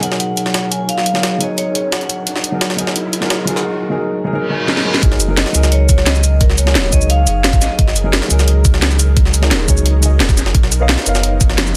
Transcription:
Already playing: ambient pad F#3 D#4 G#4 A#4 C#5, grand piano D#4 G#4 A#4, riser
0.00 grand piano F#3 D#4 G#4, vibraphone F#5, closed hi-hat
0.05 grand piano A#4
0.12 snare
0.20 vibraphone F#5, closed hi-hat
0.37 closed hi-hat
0.46 snare
0.54 snare, closed hi-hat
0.71 vibraphone G#5, closed hi-hat
0.89 vibraphone F5, closed hi-hat
0.98 snare
1.06 closed hi-hat
1.14 grand piano F#3 D#4 G#4 A#4, snare
1.23 snare, closed hi-hat
1.38 grand piano F#3 D#4 G#4, vibraphone D#5, closed hi-hat
1.43 grand piano C#5
1.58 vibraphone C#5, closed hi-hat
1.75 closed hi-hat
1.92 vibraphone F#5, snare, closed hi-hat
2.01 closed hi-hat
2.09 closed hi-hat
2.27 closed hi-hat
2.36 snare
2.44 closed hi-hat
2.52 grand piano F#3 D#4 G#4 A#4
2.61 snare, closed hi-hat
2.70 snare
2.76 grand piano F#3 D#4 G#4, closed hi-hat
2.81 grand piano A#4
2.87 snare
2.96 closed hi-hat
3.13 closed hi-hat
3.21 grand piano F#3 D#4 G#4 A#4, snare
3.30 snare, closed hi-hat
3.45 grand piano F#3 D#4 G#4, closed hi-hat
3.50 grand piano A#4
3.56 snare
3.90 grand piano F#3 D#4 G#4 A#4
4.24 grand piano F#3 D#4 G#4 A#4
4.33 grand piano F#3 D#4 G#4 A#4, reverse cymbal
4.50 grand piano F#3 D#4 G#4 A#4
4.67 grand piano F#3 D#4 G#4 A#4, snare
4.77 snare
4.85 grand piano F#3 D#4 G#4 A#4
4.94 snare
5.02 sub bass F#1, grand piano F#3 D#4 G#4 A#4, ambient pad D#4 G#4 A#4, kick, closed hi-hat
5.12 snare
5.20 closed hi-hat, shaker
5.28 grand piano F#3 D#4 G#4 A#4
5.37 vibraphone D#5, snare, closed hi-hat
5.46 snare
5.52 sub bass C#2, grand piano F#3 D#4 G#4, closed hi-hat, shaker
5.57 grand piano A#4
5.63 snare, shaker
5.72 vibraphone C#5, closed hi-hat
5.89 kick, closed hi-hat, shaker
5.98 snare
6.06 vibraphone D#5, snare, closed hi-hat, shaker
6.15 shaker
6.24 closed hi-hat, shaker
6.41 vibraphone A#4, kick, closed hi-hat
6.50 snare
6.58 vibraphone C#5, closed hi-hat, shaker
6.66 grand piano F#3 D#4 G#4 A#4, snare
6.75 sub bass D#1, snare, closed hi-hat
6.90 sub bass C#2, grand piano F#3 D#4 G#4, vibraphone D#5, kick, closed hi-hat, open hi-hat, shaker
6.95 grand piano C#5
7.01 shaker
7.10 vibraphone F5, closed hi-hat
7.27 sub bass F#1, closed hi-hat, shaker
7.44 snare, closed hi-hat, shaker
7.53 vibraphone F5, kick, closed hi-hat, shaker
7.61 vibraphone D#5, snare, closed hi-hat, shaker
7.79 sub bass F#1, kick, closed hi-hat
7.88 snare
7.96 closed hi-hat, shaker
8.04 grand piano F#3 D#4 G#4 A#4
8.13 snare, closed hi-hat
8.22 snare
8.28 sub bass C#2, grand piano F#3 D#4 G#4, closed hi-hat, shaker
8.33 grand piano A#4
8.39 snare, shaker
8.48 closed hi-hat
8.65 kick, closed hi-hat, shaker
8.74 snare
8.82 snare, closed hi-hat, shaker
8.91 shaker
8.99 closed hi-hat, shaker
9.17 kick, closed hi-hat
9.25 snare
9.34 closed hi-hat, shaker
9.42 grand piano F#3 D#4 G#4 A#4, snare
9.51 sub bass D#1, snare, closed hi-hat
9.67 sub bass C#2, grand piano F#3 D#4 G#4 C#5, kick, closed hi-hat, open hi-hat, shaker
9.77 shaker
9.86 closed hi-hat
10.01 grand piano F#3 D#4 G#4, closed hi-hat, shaker
10.06 grand piano D#5
10.20 sub bass D#1, snare, closed hi-hat, shaker
10.29 kick, snare, shaker
10.37 sub bass F#1, snare, closed hi-hat, shaker
10.46 snare
10.54 sub bass B1, ambient pad F3 C#4, kick, closed hi-hat
10.63 snare
10.72 closed hi-hat, shaker
10.80 grand piano B3 A#4 C#5 D#5 F5
10.89 snare, closed hi-hat
10.98 snare
11.04 sub bass F#1, grand piano B3 A#4 C#5 D#5, closed hi-hat, shaker
11.09 grand piano F5
11.15 snare, shaker
11.23 closed hi-hat
11.41 kick, closed hi-hat, shaker
11.50 snare
11.58 snare, closed hi-hat, shaker
11.67 shaker

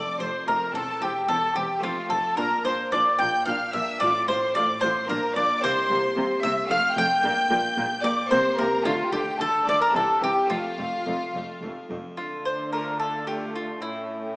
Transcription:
Already playing: harpsichord F2 A3 C4 F4, mandolin D5, violin section D5 D6
0.19 double bass section F1, cello section F2, harpsichord F2, viola section A3, mandolin C5, violin section C5 C6
0.46 double bass section F1, harpsichord F2, cello section F2, viola section A3, violin section A#4 A#5, mandolin A#4
0.72 double bass section E1, cello section E2, harpsichord E2 C4, viola section C4, violin section A4 A5, mandolin A4
1.01 double bass section E1, cello section E2, harpsichord E2, viola section C4, violin section G4 G5, mandolin G4
1.28 double bass section E1, cello section E2, harpsichord E2, viola section C4, violin section A4 A5, mandolin A4
1.56 double bass section E1, cello section E2, harpsichord E2, viola section C4, mandolin G4, violin section G4 G5
1.79 harpsichord A3 C4 F4, viola section C4
1.83 double bass section F1, harpsichord F2, cello section F2, violin section F4 F5, mandolin F4
2.10 double bass section F1, cello section F2, harpsichord F2, viola section C4, violin section A4 A5, mandolin A4
2.35 double bass section A#1, cello section A#2, harpsichord A#2 D4 F4, viola section D4, mandolin A#4, violin section A#4 A#5
2.64 double bass section A#1, cello section A#2, harpsichord A#2, viola section D4, mandolin C5, violin section C5 C6
2.92 double bass section A#1, cello section A#2, harpsichord A#2, viola section D4, mandolin D5, violin section D5 D6
3.19 double bass section A#1, harpsichord A#2, cello section A#2, viola section D4, mandolin G5, violin section G5 G6
3.46 double bass section A#1, cello section A#2, harpsichord A#2, viola section D4, mandolin F5, violin section F5 F6
3.73 double bass section A#1, harpsichord A#2, cello section A#2, viola section D4, violin section E5 E6, mandolin E5
3.99 double bass section A1, harpsichord A2 C4 F4, cello section A2, viola section F4, violin section D5 D6, mandolin D5
4.28 double bass section A1, harpsichord A2, cello section A2, viola section F4, violin section C5 C6, mandolin C5
4.55 double bass section A1, harpsichord A2, cello section A2, viola section F4, violin section D5 D6, mandolin D5
4.81 double bass section A1, harpsichord A2, cello section A2, viola section F4, mandolin C5, violin section C5 C6
5.05 harpsichord A#3 D4 F4, violin section A#4
5.09 double bass section A#1, harpsichord A#2, cello section A#2, viola section D4, mandolin A#4, violin section A#5
5.35 double bass section A#1, cello section A#2, harpsichord A#2, viola section D4, violin section D5 D6, mandolin D5
5.58 harpsichord A#3 C4 E4, violin section C6
5.63 double bass section C2, harpsichord C3, cello section C3, viola section A#3, violin section C5, mandolin C5
5.90 double bass section C2, cello section C3, harpsichord C3, viola section A#3
6.16 double bass section C2, harpsichord C3, cello section C3, viola section A#3
6.42 double bass section C2, harpsichord C3, cello section C3, viola section A#3, violin section E5 E6, mandolin E5
6.65 harpsichord A3 C4 F4, violin section F5
6.69 double bass section F1, harpsichord F2, cello section F2, viola section A3, mandolin F5, violin section F6
6.93 double bass section F1, harpsichord F2, cello section F2, viola section A3, violin section G5 G6
6.98 mandolin G5
7.21 double bass section A#1, harpsichord A#2 A#3 D4, cello section A#2, viola section A#3
7.50 double bass section A#1, harpsichord A#2, cello section A#2, viola section A#3
7.77 double bass section A#1, harpsichord A#2, cello section A#2, viola section A#3
8.02 double bass section A#1, harpsichord A#2, cello section A#2, viola section A#3, violin section D5 D6, mandolin D5
8.27 double bass section C2, harpsichord C3 A#3 E4, cello section C3, viola section A#3, violin section C5 C6, mandolin C5
8.57 double bass section C2, cello section C3, harpsichord C3, viola section A#3, violin section A#4 A#5, mandolin A#4
8.82 double bass section D2, harpsichord D3 A3 F4, cello section D3, viola section A3, violin section F4 F5, mandolin F4
9.10 double bass section D2, harpsichord D3, cello section D3, viola section A3, violin section G4 G5, mandolin G4
9.38 double bass section D2, harpsichord D3, cello section D3, viola section A3, violin section A4 A5, mandolin A4
9.66 double bass section D2, harpsichord D3, cello section D3, viola section A3, violin section D5 D6, mandolin D5
9.80 violin section A#4 A#5, mandolin A#4
9.90 harpsichord C3 C4 E4
9.94 double bass section C2, cello section C3, viola section E3, violin section A4 A5, mandolin A4
10.21 double bass section C2, harpsichord C3, cello section C3, viola section E3, violin section G4 G5, mandolin G4
10.45 harpsichord A3 C4 F4
10.49 double bass section F1, cello section F2, harpsichord F2, viola section A3, mandolin F4, violin section F4 F5
10.78 double bass section F1, harpsichord F2, cello section F2, viola section A3
11.06 double bass section F1, cello section F2, harpsichord F2, viola section A3
11.34 double bass section F1, cello section F2, harpsichord F2, viola section A3
11.62 double bass section F1, cello section F2, harpsichord F2, viola section A3
11.90 double bass section F1, cello section F2, harpsichord F2, viola section A3
12.17 cello section D3, harpsichord D3, viola section A3, violin section D4 F5, mandolin F4
12.45 mandolin C5
12.73 harpsichord A3 D4 F4, mandolin A#4
13.00 mandolin A4
13.27 harpsichord A3 D4 F4, mandolin G4
13.56 mandolin F4
13.79 harpsichord A2, cello section A2, violin section C#4 G5, mandolin E4

